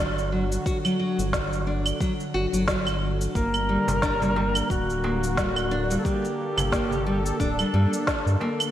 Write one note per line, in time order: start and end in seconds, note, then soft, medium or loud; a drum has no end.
0.00 0.58 G1 medium
0.00 8.71 D3 medium
0.00 3.31 F#3 medium
0.00 0.17 D4 medium
0.00 3.31 F#4 loud
0.18 shaker soft
0.32 0.43 F#3 medium
0.52 shaker medium
0.66 0.77 F#4 medium
0.66 kick loud
0.66 shaker medium
0.85 0.93 F#3 medium
0.85 claves medium
0.85 shaker soft
0.99 1.18 F#3 medium
1.19 1.93 G1 medium
1.19 shaker medium
1.33 kick loud
1.33 snare medium
1.33 shaker medium
1.53 shaker soft
1.67 1.85 D4 medium
1.86 claves medium
1.86 shaker medium
2.00 2.11 F#3 medium
2.00 kick loud
2.00 shaker medium
2.20 shaker soft
2.34 2.47 G1 medium
2.34 2.45 F#4 loud
2.53 3.27 G1 medium
2.53 2.62 F#3 medium
2.53 shaker medium
2.68 2.86 F#3 medium
2.68 kick loud
2.68 snare medium
2.68 shaker soft
2.87 claves medium
2.87 shaker soft
3.21 shaker medium
3.35 3.78 G1 loud
3.35 6.02 G3 medium
3.35 8.71 A#3 medium
3.35 3.53 A#3 medium
3.35 4.66 A#4 loud
3.35 kick loud
3.35 shaker medium
3.54 claves medium
3.54 shaker soft
3.69 3.80 G3 medium
3.88 4.62 G1 medium
3.88 darbuka ka soft
3.88 darbuka dum medium
3.88 shaker medium
4.02 4.14 D4 loud
4.02 kick loud
4.02 snare medium
4.02 shaker medium
4.22 4.30 G3 medium
4.22 darbuka dum medium
4.22 shaker soft
4.36 4.54 G3 medium
4.36 darbuka tek medium
4.55 claves medium
4.55 shaker medium
4.70 5.97 D1 medium
4.70 5.95 F#4 loud
4.70 kick medium
4.70 shaker medium
4.90 shaker soft
5.03 5.22 A#3 medium
5.03 darbuka ka soft
5.03 darbuka tek medium
5.24 shaker medium
5.37 5.48 G3 medium
5.37 kick loud
5.37 snare medium
5.37 shaker medium
5.56 darbuka tek soft
5.56 claves medium
5.56 shaker soft
5.71 5.82 D4 loud
5.90 5.99 G3 medium
5.90 shaker medium
5.99 6.06 A4 medium
6.04 6.23 G3 medium
6.04 7.38 G4 loud
6.04 8.71 A4 loud
6.04 kick loud
6.04 shaker soft
6.25 shaker soft
6.57 7.32 G1 medium
6.57 darbuka dum medium
6.57 claves medium
6.57 shaker medium
6.72 6.91 A#3 medium
6.72 kick loud
6.72 snare medium
6.72 shaker medium
6.91 darbuka dum medium
6.91 shaker soft
7.06 7.17 G3 medium
7.26 shaker medium
7.39 7.64 D1 loud
7.39 8.44 D4 loud
7.39 7.51 D4 loud
7.39 kick loud
7.39 shaker medium
7.59 7.67 G3 medium
7.59 claves medium
7.59 shaker soft
7.74 7.86 G2 medium
7.74 7.92 G3 medium
7.93 shaker medium
8.07 kick medium
8.07 snare medium
8.07 shaker soft
8.26 8.36 G2 medium
8.26 shaker soft
8.41 8.59 A#3 medium
8.41 darbuka ka medium
8.41 darbuka tek soft
8.60 claves medium
8.60 shaker medium